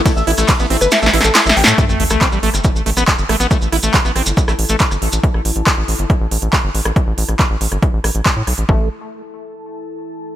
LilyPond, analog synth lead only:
\new Staff \with { instrumentName = "Analog synth lead" } { \time 4/4 \key c \major \tempo 4 = 139 e'16 e''16 e'16 e'16 r16 e'16 e'16 b'16 e'16 e'16 e'16 a'16 e'16 e'16 g'16 e'16 | r1 | r1 | r1 |
r1 | r1 | }